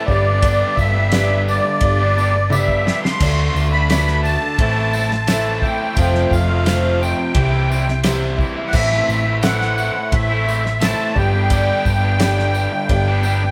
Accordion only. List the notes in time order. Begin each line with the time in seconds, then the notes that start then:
0.06 D5
0.75 E5
1.48 D5
2.51 E5
3.03 C6
3.72 B5
4.22 A5
5.61 G5
6.31 F5
7.01 G5
8.66 F#5
8.73 E5
9.43 F#5
10.13 E5
10.82 A5
11.18 G5